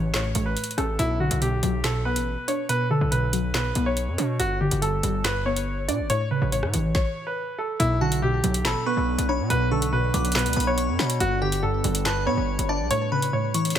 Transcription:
Already playing: 808-style bass A1, synth pluck A2 C#3 E3, grand piano C#5
0.14 synth pluck A2, grand piano C#5, snare, clap
0.35 808-style bass A1, synth pluck A3, closed hi-hat
0.46 grand piano B4
0.57 closed hi-hat
0.64 closed hi-hat
0.71 closed hi-hat
0.78 808-style bass A1, synth pluck C#4, grand piano A4, cross-stick, closed hi-hat
0.99 808-style bass B1, synth pluck B2, grand piano E4, closed hi-hat
1.20 synth pluck D3, grand piano F#4
1.31 808-style bass B1, closed hi-hat
1.42 synth pluck B2, grand piano G4, closed hi-hat
1.63 808-style bass B1, synth pluck F#3, closed hi-hat
1.84 synth pluck B2, grand piano A4, snare, clap, closed hi-hat
2.05 synth pluck B3, grand piano B4
2.16 808-style bass A1, closed hi-hat
2.48 synth pluck D4, grand piano C#5, closed hi-hat
2.69 synth pluck B2, grand piano B4, closed hi-hat
2.90 synth pluck D3, grand piano A4
3.01 808-style bass B1
3.12 synth pluck B2, grand piano B4, closed hi-hat
3.33 synth pluck F#3, closed hi-hat
3.54 synth pluck B2, grand piano B4, snare, clap
3.75 808-style bass B1, synth pluck B3, closed hi-hat
3.86 grand piano C#5
3.97 closed hi-hat
4.08 808-style bass F#2
4.18 808-style bass B2, synth pluck D4, closed hi-hat
4.39 808-style bass G1, synth pluck G2, grand piano F#4, closed hi-hat
4.61 synth pluck D3, grand piano G4
4.71 808-style bass G1, closed hi-hat
4.82 synth pluck G2, grand piano A4, closed hi-hat
5.03 808-style bass G1, synth pluck G3, closed hi-hat
5.24 synth pluck G2, grand piano B4, snare, clap, closed hi-hat
5.46 synth pluck B3, grand piano C#5
5.57 closed hi-hat
5.88 808-style bass B2, synth pluck D4, grand piano D5, closed hi-hat
5.99 808-style bass G1
6.10 synth pluck A2, grand piano C#5, closed hi-hat
6.31 synth pluck C#3, grand piano B4
6.42 808-style bass A1
6.52 synth pluck A2, grand piano C#5, closed hi-hat
6.63 808-style bass A2, cross-stick
6.74 808-style bass A1, synth pluck E3, closed hi-hat
6.95 grand piano C#5, kick, snare
7.27 grand piano B4
7.58 grand piano A4
7.80 808-style bass B1, synth pluck B2, ambient pad B3 D4 F#5, grand piano E4, closed hi-hat
8.01 synth pluck D3, grand piano F#4, synth bell A5
8.12 closed hi-hat
8.22 synth pluck B2, grand piano G4
8.44 808-style bass B1, synth pluck F#3, closed hi-hat
8.54 closed hi-hat
8.65 808-style bass A1, synth pluck B2, grand piano A4, synth bell B5, snare, clap, closed hi-hat
8.86 synth pluck B3, grand piano B4, synth bell C#6
8.97 808-style bass B1
9.18 808-style bass B1, closed hi-hat
9.29 synth pluck D4, grand piano C#5, synth bell B5
9.40 808-style bass B2
9.50 808-style bass B1, synth pluck B2, grand piano B4, closed hi-hat
9.71 synth pluck D3, grand piano A4, synth bell C#6
9.82 closed hi-hat
9.93 synth pluck B2, grand piano B4
10.14 808-style bass B1, synth pluck F#3, synth bell D6, closed hi-hat
10.25 closed hi-hat
10.32 synth pluck B2, grand piano B4, snare, closed hi-hat
10.36 clap, closed hi-hat
10.46 808-style bass D2, closed hi-hat
10.53 808-style bass B1, synth pluck B3, synth bell B5, closed hi-hat
10.60 closed hi-hat
10.67 grand piano C#5
10.78 synth bell C#6, closed hi-hat
10.88 808-style bass F#2
10.99 808-style bass B2, synth pluck D4, synth bell B5, snare
11.10 closed hi-hat
11.20 808-style bass G1, synth pluck G2, ambient pad G3 D4 B4, grand piano F#4, closed hi-hat
11.41 synth pluck D3, grand piano G4, synth bell G5
11.52 closed hi-hat
11.63 synth pluck G2, grand piano A4
11.84 808-style bass G1, synth pluck G3, closed hi-hat
11.95 closed hi-hat
12.05 synth pluck G2, grand piano B4, synth bell A5, snare, clap, closed hi-hat
12.27 808-style bass B2, synth pluck B3, grand piano C#5, synth bell B5
12.37 808-style bass G1
12.59 808-style bass G1, closed hi-hat
12.69 synth pluck D4, grand piano D5, synth bell A5
12.80 808-style bass B1
12.91 synth pluck A2, ambient pad A3 E4 C#5, grand piano C#5, closed hi-hat
13.12 synth pluck C#3, grand piano B4, synth bell B5
13.22 closed hi-hat
13.33 synth pluck A2, grand piano C#5
13.54 synth pluck E3, synth bell C#6, closed hi-hat
13.65 closed hi-hat
13.70 closed hi-hat
13.76 synth pluck A2, grand piano C#5, snare, closed hi-hat

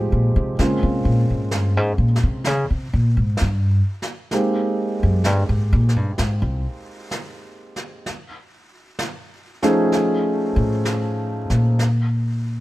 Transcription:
Already playing: upright bass A2, grand piano F3 G#3 C4 D#4 G4
0.12 upright bass A#2
0.36 upright bass C3
0.59 upright bass C#3, grand piano G#3 A#3 C4 C#4 F4, brush sweep, snare
0.83 upright bass C3
1.05 upright bass A#2
1.30 upright bass G#2
1.51 upright bass G2, snare
1.77 upright bass G#2
1.98 upright bass A#2
2.16 snare
2.23 upright bass C3
2.44 upright bass C#3, brush sweep, snare
2.70 upright bass C3
2.93 upright bass A#2
3.17 upright bass G#2
3.37 snare
3.41 upright bass G2
4.02 snare
4.31 grand piano G#3 A#3 C4 D#4 G4, brush sweep, snare
5.03 upright bass F#2
5.24 upright bass G2, snare
5.49 upright bass G#2
5.73 upright bass A#2
5.89 snare
5.96 upright bass G2
6.18 upright bass G#2, brush sweep, snare
6.42 upright bass C2
7.11 snare
7.76 snare
8.06 brush sweep, snare
8.99 snare
9.62 grand piano F3 A3 C#4 D#4 G#4, snare
9.92 brush sweep, snare
10.56 upright bass A2
10.85 snare
11.50 upright bass A#2, snare
11.79 brush sweep, snare

